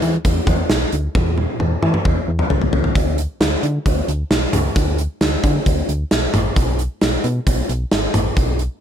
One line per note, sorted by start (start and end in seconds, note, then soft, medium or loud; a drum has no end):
0.02 0.18 E3 medium
0.02 closed hi-hat medium
0.25 0.41 E2 loud
0.25 kick loud
0.25 closed hi-hat medium
0.47 0.63 E2 medium
0.47 kick medium
0.47 closed hi-hat medium
0.47 mid tom medium
0.70 0.86 B1 medium
0.70 snare loud
0.70 closed hi-hat medium
0.92 1.08 D2 medium
0.92 closed hi-hat medium
1.15 1.47 E2 loud
1.15 kick loud
1.15 high tom medium
1.38 high tom medium
1.60 1.76 E2 loud
1.60 mid tom medium
1.83 1.98 E3 loud
1.83 mid tom medium
1.94 mid tom medium
2.05 2.21 E2 loud
2.05 kick loud
2.05 mid tom medium
2.28 2.44 E2 loud
2.39 mid tom medium
2.50 2.66 C#2 medium
2.50 floor tom medium
2.62 floor tom medium
2.73 2.89 C#2 medium
2.73 floor tom loud
2.84 floor tom medium
2.95 3.27 D2 loud
2.95 kick loud
2.95 closed hi-hat medium
3.18 closed hi-hat medium
3.41 3.56 D2 loud
3.41 snare loud
3.41 closed hi-hat medium
3.63 3.79 D3 medium
3.63 closed hi-hat medium
3.86 4.02 D2 loud
3.86 kick loud
3.86 closed hi-hat medium
4.08 4.24 D2 medium
4.08 closed hi-hat medium
4.31 4.46 B1 medium
4.31 snare loud
4.31 closed hi-hat medium
4.53 4.69 C#2 loud
4.53 closed hi-hat medium
4.53 mid tom loud
4.76 5.07 D2 loud
4.76 kick loud
4.76 closed hi-hat medium
4.98 closed hi-hat medium
5.21 5.37 D2 loud
5.21 snare loud
5.21 closed hi-hat medium
5.44 5.59 D3 medium
5.44 kick loud
5.44 closed hi-hat medium
5.66 5.82 D2 loud
5.66 kick loud
5.66 closed hi-hat medium
5.89 6.04 D2 loud
5.89 closed hi-hat medium
6.11 6.27 B1 medium
6.11 snare loud
6.11 closed hi-hat medium
6.34 6.50 A1 medium
6.34 closed hi-hat medium
6.34 mid tom loud
6.56 6.88 B1 loud
6.56 kick loud
6.56 closed hi-hat medium
6.79 closed hi-hat medium
7.01 7.17 B1 loud
7.01 snare loud
7.01 closed hi-hat medium
7.24 7.40 B2 loud
7.24 closed hi-hat medium
7.47 7.62 B1 loud
7.47 kick medium
7.47 closed hi-hat medium
7.69 7.85 B1 loud
7.69 closed hi-hat medium
7.92 8.07 G#1 medium
7.92 snare loud
7.92 closed hi-hat medium
8.14 8.30 A1 medium
8.14 closed hi-hat medium
8.14 mid tom loud
8.37 8.68 B1 loud
8.37 kick loud
8.37 closed hi-hat medium
8.59 closed hi-hat medium